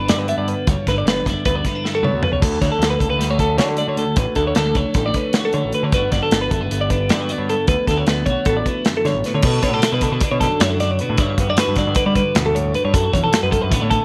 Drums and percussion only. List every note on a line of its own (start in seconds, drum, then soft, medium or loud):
0.08 snare loud
0.08 closed hi-hat medium
0.28 closed hi-hat medium
0.48 closed hi-hat medium
0.67 kick loud
0.67 closed hi-hat medium
0.87 kick medium
0.87 snare soft
0.87 closed hi-hat medium
1.07 snare loud
1.07 closed hi-hat medium
1.26 kick medium
1.26 snare soft
1.26 closed hi-hat medium
1.45 kick loud
1.45 closed hi-hat medium
1.65 kick medium
1.65 snare soft
1.65 closed hi-hat medium
1.85 snare medium
2.04 mid tom medium
2.23 floor tom medium
2.42 kick loud
2.42 closed hi-hat medium
2.42 splash medium
2.62 kick medium
2.62 snare soft
2.62 closed hi-hat medium
2.82 snare loud
2.82 closed hi-hat medium
3.00 kick medium
3.00 closed hi-hat medium
3.21 snare soft
3.21 closed hi-hat medium
3.39 kick medium
3.39 closed hi-hat medium
3.58 snare loud
3.58 closed hi-hat medium
3.77 closed hi-hat medium
3.97 closed hi-hat medium
4.16 kick loud
4.16 closed hi-hat medium
4.35 kick medium
4.35 closed hi-hat medium
4.55 snare loud
4.55 closed hi-hat medium
4.75 kick medium
4.75 closed hi-hat medium
4.94 kick loud
4.94 closed hi-hat medium
5.14 kick medium
5.14 closed hi-hat medium
5.33 snare loud
5.33 closed hi-hat medium
5.53 closed hi-hat medium
5.72 closed hi-hat soft
5.92 kick loud
5.92 closed hi-hat medium
6.12 kick medium
6.12 snare soft
6.12 closed hi-hat medium
6.31 snare loud
6.31 closed hi-hat medium
6.51 kick medium
6.51 closed hi-hat medium
6.71 closed hi-hat medium
6.90 kick medium
6.90 closed hi-hat medium
7.09 snare loud
7.09 closed hi-hat medium
7.29 closed hi-hat medium
7.49 closed hi-hat medium
7.67 kick loud
7.67 closed hi-hat medium
7.87 kick medium
7.87 snare soft
7.87 closed hi-hat medium
8.07 snare loud
8.07 closed hi-hat medium
8.26 kick medium
8.26 closed hi-hat medium
8.45 kick loud
8.45 closed hi-hat medium
8.66 kick medium
8.66 closed hi-hat medium
8.85 snare loud
8.85 closed hi-hat medium
9.05 snare soft
9.05 closed hi-hat medium
9.24 snare soft
9.24 closed hi-hat medium
9.42 kick loud
9.42 crash loud
9.63 kick medium
9.63 closed hi-hat medium
9.82 snare loud
9.82 closed hi-hat loud
10.01 kick medium
10.01 snare soft
10.01 closed hi-hat medium
10.21 kick loud
10.21 closed hi-hat loud
10.41 kick medium
10.41 snare soft
10.41 closed hi-hat medium
10.60 snare loud
10.60 closed hi-hat loud
10.80 snare soft
10.80 closed hi-hat medium
10.99 closed hi-hat medium
11.18 kick loud
11.18 closed hi-hat medium
11.38 kick medium
11.38 closed hi-hat medium
11.57 snare loud
11.57 closed hi-hat loud
11.76 kick medium
11.76 snare soft
11.76 closed hi-hat medium
11.95 kick loud
11.95 closed hi-hat medium
12.15 kick medium
12.15 closed hi-hat medium
12.35 snare loud
12.35 closed hi-hat medium
12.56 closed hi-hat medium
12.74 closed hi-hat medium
12.94 kick loud
12.94 closed hi-hat loud
13.13 kick medium
13.13 closed hi-hat medium
13.33 snare loud
13.33 closed hi-hat loud
13.52 kick medium
13.52 closed hi-hat medium
13.72 kick loud
13.72 closed hi-hat loud
13.91 kick medium
13.91 closed hi-hat medium